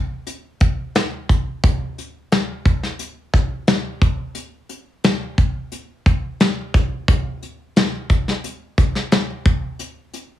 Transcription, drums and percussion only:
0.27 closed hi-hat medium
0.60 kick medium
0.60 closed hi-hat medium
0.95 snare loud
0.95 closed hi-hat medium
1.29 kick medium
1.29 closed hi-hat medium
1.64 kick loud
1.64 closed hi-hat medium
1.98 closed hi-hat medium
2.32 snare loud
2.32 closed hi-hat medium
2.65 kick medium
2.65 closed hi-hat medium
2.83 snare soft
2.99 closed hi-hat medium
3.34 kick medium
3.34 closed hi-hat medium
3.67 snare loud
3.67 closed hi-hat medium
4.02 kick medium
4.02 closed hi-hat medium
4.35 closed hi-hat medium
4.69 closed hi-hat medium
5.04 snare loud
5.04 closed hi-hat medium
5.38 kick medium
5.38 closed hi-hat medium
5.72 closed hi-hat medium
6.06 kick medium
6.06 closed hi-hat medium
6.40 snare loud
6.40 closed hi-hat medium
6.74 kick medium
6.74 closed hi-hat medium
7.08 kick loud
7.08 closed hi-hat medium
7.43 closed hi-hat medium
7.76 snare loud
7.76 closed hi-hat medium
8.10 kick medium
8.10 closed hi-hat medium
8.28 snare soft
8.44 closed hi-hat medium
8.78 kick medium
8.78 closed hi-hat medium
8.95 snare soft
9.12 snare loud
9.12 closed hi-hat medium
9.45 kick loud
9.45 closed hi-hat medium
9.79 closed hi-hat medium
10.14 closed hi-hat medium

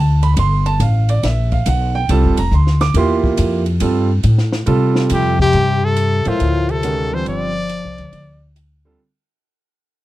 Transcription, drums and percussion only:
0.23 ride medium
0.37 ride medium
0.66 ride soft
0.80 hi-hat pedal soft
0.80 ride medium
1.09 ride medium
1.23 snare soft
1.23 ride medium
1.52 kick soft
1.52 ride soft
1.66 hi-hat pedal medium
1.66 ride medium
2.09 ride medium
2.37 ride medium
2.52 hi-hat pedal soft
2.67 snare soft
2.81 snare soft
2.81 ride soft
2.94 ride medium
3.24 kick medium
3.37 hi-hat pedal medium
3.37 ride medium
3.66 ride soft
3.80 ride medium
4.23 hi-hat pedal soft
4.23 ride medium
4.38 snare soft
4.53 snare medium
4.66 ride medium
4.96 snare medium
5.10 hi-hat pedal medium
5.10 ride medium
5.39 kick medium
5.53 ride medium
5.96 hi-hat pedal medium
5.96 ride medium
6.25 ride soft
6.40 ride medium
6.69 ride soft
6.83 hi-hat pedal medium
6.83 ride medium
7.26 ride medium
7.69 hi-hat pedal medium
7.69 ride medium
7.98 ride soft
8.13 ride medium
8.56 hi-hat pedal medium
8.56 ride medium

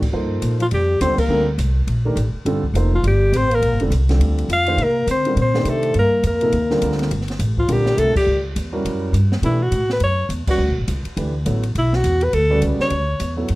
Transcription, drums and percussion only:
0.02 kick medium
0.02 crash medium
0.42 hi-hat pedal medium
0.42 ride medium
0.60 ride soft
0.71 ride medium
1.01 hi-hat pedal medium
1.01 ride medium
1.18 kick medium
1.18 crash medium
1.58 hi-hat pedal medium
1.58 ride medium
1.88 ride medium
2.17 hi-hat pedal medium
2.17 ride medium
2.46 ride medium
2.64 kick soft
2.75 hi-hat pedal soft
2.75 ride medium
3.04 ride medium
3.33 hi-hat pedal medium
3.33 ride medium
3.51 ride soft
3.62 ride medium
3.80 ride soft
3.92 hi-hat pedal medium
3.92 ride medium
4.09 snare soft
4.09 ride soft
4.21 ride medium
4.38 ride soft
4.50 hi-hat pedal medium
4.50 ride medium
4.66 ride soft
4.78 ride medium
5.07 hi-hat pedal medium
5.07 ride medium
5.25 ride soft
5.37 ride medium
5.54 snare medium
5.65 hi-hat pedal medium
5.65 ride medium
5.83 ride soft
5.94 ride medium
6.23 hi-hat pedal medium
6.23 ride medium
6.41 ride soft
6.52 ride medium
6.70 snare soft
6.82 hi-hat pedal medium
6.82 ride medium
6.92 snare soft
6.99 snare soft
6.99 ride soft
7.11 ride medium
7.21 snare soft
7.28 snare soft
7.28 ride soft
7.39 hi-hat pedal medium
7.39 ride medium
7.57 kick medium
7.69 ride medium
7.86 snare medium
7.98 hi-hat pedal medium
7.98 ride medium
8.16 kick medium
8.16 crash medium
8.56 hi-hat pedal medium
8.56 ride medium
8.85 ride medium
9.14 hi-hat pedal medium
9.14 ride medium
9.32 snare medium
9.43 ride medium
9.72 hi-hat pedal soft
9.72 ride medium
9.89 snare soft
10.00 ride medium
10.30 hi-hat pedal medium
10.30 ride medium
10.47 kick medium
10.47 crash medium
10.88 hi-hat pedal medium
10.88 ride medium
11.05 ride soft
11.17 ride medium
11.46 hi-hat pedal medium
11.46 ride medium
11.63 ride soft
11.75 ride medium
11.93 snare soft
12.04 hi-hat pedal soft
12.04 ride medium
12.21 ride soft
12.33 ride medium
12.62 hi-hat pedal soft
12.62 ride medium
12.80 snare soft
12.90 ride medium
13.20 hi-hat pedal medium
13.20 ride medium
13.48 ride medium

